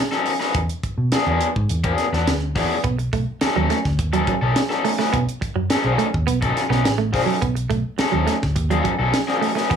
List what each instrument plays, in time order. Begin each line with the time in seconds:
0.11 overdriven electric guitar F#3 C#4 D#4 A4, snare
0.26 open hi-hat
0.40 overdriven electric guitar F#3 C#4 D#4 B4, snare
0.55 picked electric bass E2, kick, closed hi-hat
0.70 closed hi-hat
0.84 kick, closed hi-hat
0.98 picked electric bass B2
1.12 overdriven electric guitar F#3 B3 D4 G#4, muted picked electric bass stroke, snare, closed hi-hat
1.27 picked electric bass E2, overdriven electric guitar F#3 B3 D4 G#4
1.41 closed hi-hat
1.56 picked electric bass G#2, kick
1.69 picked electric bass E2, closed hi-hat
1.84 overdriven electric guitar F#3 B3 D4 G#4, kick, closed hi-hat
1.98 snare, closed hi-hat
2.13 picked electric bass E2, overdriven electric guitar F#3 B3 D4 B4, snare
2.27 picked electric bass D2, snare, closed hi-hat
2.56 picked electric bass E2, overdriven electric guitar F#3 B3 D4 G#4, kick, snare, open hi-hat
2.84 picked electric bass B1, clean electric guitar B3, kick, closed hi-hat
2.98 muted clean electric guitar stroke, closed hi-hat
3.13 picked electric bass B1, clean electric guitar A3, kick, closed hi-hat
3.41 overdriven electric guitar F#3 C#4 D#4 A4, muted clean electric guitar stroke, muted picked electric bass stroke, snare, closed hi-hat
3.55 picked electric bass D#2, clean electric guitar F#3, overdriven electric guitar F#3 C#4 D#4 A4
3.70 clean electric guitar A3, snare, closed hi-hat
3.85 picked electric bass D2, kick, snare
3.99 picked electric bass D#2, muted clean electric guitar stroke, kick, closed hi-hat
4.13 clean electric guitar F#3, overdriven electric guitar F#3 C#4 D#4 A4, closed hi-hat
4.27 clean electric guitar F#3, kick, closed hi-hat
4.42 picked electric bass B1, overdriven electric guitar F#3 C#4 D#4 A4
4.56 muted clean electric guitar stroke, snare, closed hi-hat
4.70 overdriven electric guitar F#3 C#4 D#4 A4, snare
4.85 clean electric guitar A3, open hi-hat
4.99 overdriven electric guitar F#3 C#4 D#4 B4, clean electric guitar A3, snare
5.13 picked electric bass B1, clean electric guitar B3, kick, closed hi-hat
5.29 closed hi-hat
5.41 muted clean electric guitar stroke, kick, closed hi-hat
5.56 picked electric bass F#2, clean electric guitar F#3
5.70 overdriven electric guitar F#3 C#4 D#4 A4, muted picked electric bass stroke, snare, closed hi-hat
5.84 picked electric bass B1, overdriven electric guitar F#3 C#4 D#4 A4
5.98 clean electric guitar A3, closed hi-hat
6.14 picked electric bass D#2, kick
6.27 picked electric bass B1, clean electric guitar B3, closed hi-hat
6.41 overdriven electric guitar F#3 C#4 D#4 A4, muted clean electric guitar stroke, kick, closed hi-hat
6.57 snare, closed hi-hat
6.70 picked electric bass B1, overdriven electric guitar F#3 C#4 D#4 B4, clean electric guitar B3, snare
6.84 picked electric bass A1, snare, closed hi-hat
6.98 clean electric guitar A3
7.13 picked electric bass B1, overdriven electric guitar F#3 C#4 D#4 A4, muted clean electric guitar stroke, kick, snare, open hi-hat
7.26 clean electric guitar F#3
7.42 picked electric bass B1, clean electric guitar B3, kick, closed hi-hat
7.55 muted clean electric guitar stroke, closed hi-hat
7.70 picked electric bass B1, clean electric guitar A3, kick, closed hi-hat
7.98 overdriven electric guitar F#3 C#4 D#4 A4, muted clean electric guitar stroke, muted picked electric bass stroke, snare, closed hi-hat
8.12 picked electric bass D#2, clean electric guitar F#3, overdriven electric guitar F#3 C#4 D#4 A4
8.27 clean electric guitar A3, snare, closed hi-hat
8.42 picked electric bass D2, kick, snare
8.56 picked electric bass D#2, muted clean electric guitar stroke, kick, closed hi-hat
8.70 clean electric guitar F#3, overdriven electric guitar F#3 C#4 D#4 A4, closed hi-hat
8.84 clean electric guitar F#3, kick, closed hi-hat
8.99 picked electric bass B1, overdriven electric guitar F#3 C#4 D#4 A4
9.13 muted clean electric guitar stroke, snare, closed hi-hat
9.28 overdriven electric guitar F#3 C#4 D#4 A4, snare
9.41 clean electric guitar A3, open hi-hat
9.55 overdriven electric guitar F#3 C#4 D#4 B4, clean electric guitar A3, snare
9.70 picked electric bass E2, clean electric guitar B3, kick, closed hi-hat